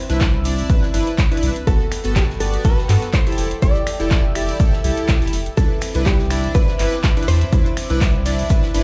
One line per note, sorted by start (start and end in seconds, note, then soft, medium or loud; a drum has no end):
0.00 1.63 C4 medium
0.00 1.39 C5 loud
0.00 1.63 E5 medium
0.00 3.34 B5 medium
0.00 1.65 E6 medium
0.09 0.63 C2 medium
0.09 0.31 D4 medium
0.09 0.31 E4 medium
0.09 0.31 B4 loud
0.09 snare soft
0.09 closed hi-hat medium
0.20 kick loud
0.20 snare loud
0.20 clap loud
0.20 closed hi-hat medium
0.20 shaker medium
0.45 0.67 D4 medium
0.45 0.67 E4 medium
0.45 0.67 D5 loud
0.45 open hi-hat loud
0.45 shaker medium
0.58 open hi-hat medium
0.69 0.84 D4 loud
0.69 0.84 E4 medium
0.69 0.84 B4 loud
0.69 kick loud
0.69 closed hi-hat medium
0.69 shaker medium
0.83 snare medium
0.94 1.02 G1 medium
0.94 1.08 D4 loud
0.94 1.08 E4 medium
0.94 1.08 B4 loud
0.94 open hi-hat loud
0.94 shaker medium
1.07 closed hi-hat medium
1.18 kick loud
1.18 snare loud
1.18 clap loud
1.18 closed hi-hat medium
1.18 shaker medium
1.31 1.53 D4 loud
1.31 1.53 E4 medium
1.31 1.53 B4 loud
1.31 closed hi-hat soft
1.37 closed hi-hat medium
1.42 1.51 C2 loud
1.42 open hi-hat loud
1.42 shaker medium
1.56 closed hi-hat medium
1.67 1.75 G1 loud
1.67 1.81 B3 medium
1.67 1.81 F#4 medium
1.67 2.16 A4 loud
1.67 5.54 A4 medium
1.67 1.82 A4 medium
1.67 3.36 F#5 medium
1.67 3.36 G5 medium
1.67 kick loud
1.67 closed hi-hat medium
1.67 shaker medium
1.92 finger snap medium
1.92 open hi-hat loud
1.92 shaker medium
2.04 2.58 G1 medium
2.04 2.26 B3 medium
2.04 2.26 F#4 medium
2.04 2.26 A4 loud
2.04 closed hi-hat soft
2.04 closed hi-hat medium
2.16 2.23 G4 medium
2.16 kick loud
2.16 snare loud
2.16 clap loud
2.16 closed hi-hat medium
2.16 shaker medium
2.30 snare soft
2.40 2.62 B3 medium
2.40 2.62 F#4 medium
2.40 2.65 A4 medium
2.40 2.62 D5 loud
2.40 open hi-hat loud
2.40 shaker medium
2.54 closed hi-hat medium
2.64 2.79 B3 loud
2.64 2.79 F#4 medium
2.64 2.79 A4 loud
2.64 3.13 B4 loud
2.64 kick loud
2.64 closed hi-hat medium
2.64 shaker loud
2.78 snare medium
2.89 2.97 G2 loud
2.89 3.03 B3 loud
2.89 3.03 F#4 medium
2.89 3.04 A4 loud
2.89 clap medium
2.89 open hi-hat loud
2.89 shaker medium
3.02 snare soft
3.02 closed hi-hat soft
3.14 3.62 C5 loud
3.14 kick loud
3.14 snare loud
3.14 clap loud
3.14 closed hi-hat medium
3.14 shaker medium
3.26 3.48 E4 loud
3.26 3.48 G4 medium
3.26 3.48 A4 loud
3.26 closed hi-hat medium
3.32 closed hi-hat medium
3.38 3.54 F1 medium
3.38 5.55 E5 medium
3.38 5.55 G5 medium
3.38 5.55 E6 medium
3.38 open hi-hat loud
3.38 shaker medium
3.51 closed hi-hat medium
3.62 3.70 F1 medium
3.62 3.76 E4 medium
3.62 3.77 G4 medium
3.62 3.77 A4 medium
3.62 4.72 D5 loud
3.62 kick loud
3.62 closed hi-hat medium
3.62 shaker medium
3.75 closed hi-hat soft
3.87 finger snap medium
3.87 open hi-hat loud
3.87 shaker medium
3.99 4.53 F1 medium
3.99 4.21 E4 medium
3.99 4.21 G4 medium
3.99 4.21 A4 loud
3.99 snare soft
3.99 closed hi-hat medium
4.11 kick loud
4.11 snare loud
4.11 clap loud
4.11 closed hi-hat medium
4.11 shaker medium
4.35 4.57 E4 medium
4.35 4.57 G4 medium
4.35 4.57 D5 loud
4.35 finger snap medium
4.35 open hi-hat loud
4.35 shaker medium
4.49 open hi-hat medium
4.59 4.74 E4 loud
4.59 4.74 G4 medium
4.59 4.74 A4 loud
4.59 kick loud
4.59 closed hi-hat medium
4.59 shaker medium
4.72 5.29 C5 loud
4.72 snare medium
4.84 4.92 C2 medium
4.84 5.18 E4 medium
4.84 5.19 G4 medium
4.84 5.19 A4 loud
4.84 open hi-hat loud
4.84 shaker medium
4.97 closed hi-hat soft
5.08 5.17 A1 loud
5.08 kick loud
5.08 snare loud
5.08 clap loud
5.08 closed hi-hat medium
5.08 shaker medium
5.21 5.29 F1 loud
5.21 5.34 E4 medium
5.21 5.34 G4 medium
5.21 5.35 A4 medium
5.21 closed hi-hat soft
5.27 closed hi-hat medium
5.33 5.49 F1 medium
5.33 open hi-hat loud
5.33 shaker medium
5.46 closed hi-hat soft
5.57 5.65 C2 medium
5.57 8.83 C4 medium
5.57 5.71 D4 medium
5.57 5.72 E4 medium
5.57 6.06 A4 loud
5.57 5.72 B4 medium
5.57 8.83 E5 medium
5.57 8.83 B5 medium
5.57 8.83 D6 loud
5.57 kick loud
5.57 closed hi-hat medium
5.57 ride medium
5.57 shaker medium
5.81 finger snap medium
5.81 open hi-hat loud
5.81 ride medium
5.81 shaker medium
5.95 6.48 C2 medium
5.95 6.16 D4 loud
5.95 6.16 E4 medium
5.95 6.16 B4 loud
5.95 closed hi-hat soft
5.95 closed hi-hat medium
6.05 6.51 G4 medium
6.05 kick loud
6.05 snare loud
6.05 clap loud
6.05 closed hi-hat medium
6.05 ride medium
6.05 shaker medium
6.19 snare soft
6.30 6.52 D4 medium
6.30 6.52 E4 medium
6.30 6.52 D5 loud
6.30 finger snap medium
6.30 open hi-hat loud
6.30 ride medium
6.30 shaker medium
6.44 closed hi-hat medium
6.55 6.69 D4 loud
6.55 6.69 E4 medium
6.55 7.24 B4 loud
6.55 6.69 B4 loud
6.55 kick loud
6.55 closed hi-hat medium
6.55 ride medium
6.55 shaker medium
6.68 snare medium
6.79 6.87 G1 loud
6.79 6.93 D4 loud
6.79 6.94 E4 medium
6.79 6.94 B4 loud
6.79 clap medium
6.79 open hi-hat loud
6.79 ride medium
6.79 shaker medium
6.92 snare soft
6.92 closed hi-hat soft
7.04 kick loud
7.04 snare loud
7.04 clap loud
7.04 closed hi-hat medium
7.04 ride medium
7.04 shaker medium
7.17 7.38 D4 medium
7.17 7.38 E4 medium
7.17 7.38 B4 loud
7.17 closed hi-hat soft
7.23 closed hi-hat medium
7.28 7.44 E2 medium
7.28 8.83 C5 loud
7.28 open hi-hat loud
7.28 ride medium
7.28 shaker medium
7.41 closed hi-hat soft
7.52 7.61 C2 medium
7.52 7.67 D4 medium
7.52 7.67 E4 medium
7.52 7.67 B4 medium
7.52 kick loud
7.52 closed hi-hat medium
7.52 ride medium
7.52 shaker medium
7.66 closed hi-hat soft
7.77 finger snap medium
7.77 open hi-hat loud
7.77 ride medium
7.77 shaker medium
7.89 8.43 C2 medium
7.89 8.11 D4 loud
7.89 8.11 E4 medium
7.89 8.11 B4 loud
7.89 snare soft
7.89 closed hi-hat medium
8.01 kick loud
8.01 snare loud
8.01 clap loud
8.01 closed hi-hat medium
8.01 ride medium
8.01 shaker medium
8.25 8.47 D4 medium
8.25 8.47 E4 medium
8.25 8.48 D5 loud
8.25 open hi-hat loud
8.25 ride medium
8.25 shaker medium
8.39 open hi-hat medium
8.50 8.64 D4 loud
8.50 8.64 E4 medium
8.50 8.65 B4 loud
8.50 kick loud
8.50 closed hi-hat medium
8.50 ride medium
8.50 shaker loud
8.63 snare medium
8.74 8.83 G1 medium
8.74 8.83 D4 loud
8.74 8.83 E4 loud
8.74 8.83 B4 loud
8.74 open hi-hat loud
8.74 ride medium
8.74 shaker medium